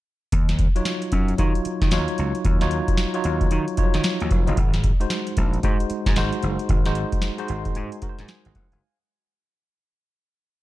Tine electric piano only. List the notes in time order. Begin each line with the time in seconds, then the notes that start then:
0.76 F#3 D#4 F4 C#5
1.38 F#3 D#4 F4 C#5
1.92 F#3 D#4 F4 C#5
2.61 F#3 D#4 F4 C#5
3.14 F#3 D#4 F4 C#5
3.77 F3 D#4 F4 C#5
3.83 F#3
4.47 F#3 D#4 F4 D#5
5.00 G#3 D#4 F#4 C5
5.63 G#3 D#4 F#4 C5
6.16 G#3 D#4 F#4 C5
6.86 G#3 D#4 F#4 C5
7.38 G#3 D#4 F#4 C5
7.49 C6
7.76 G#5
8.02 G#3 D#4 F#4 A#4
8.09 C5
8.29 C5 D#5 G#5
8.45 D#5 F#5
8.56 F#5
8.72 F5 G#5